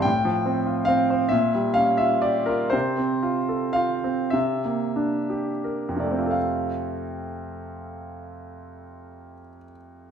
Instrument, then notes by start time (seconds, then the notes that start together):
grand piano
0.02 A2 G5
0.25 F3
0.46 C4
0.66 F4
0.85 C4 F5
1.10 C5
1.29 A#2 E5
1.55 G3
1.74 C#4 F5
1.97 F4 E5
2.22 G4 D5
2.46 F4 A#4
2.70 C3 C5
2.98 C4
3.23 F4
3.49 A4
3.73 F4 F5
4.04 C4
4.30 C3 E5
4.65 A#3
4.96 D4
5.30 G4
5.64 A#4
5.89 F2
5.97 C3 D5
6.04 A3
6.11 C4
6.19 F4
6.26 A4
6.31 F5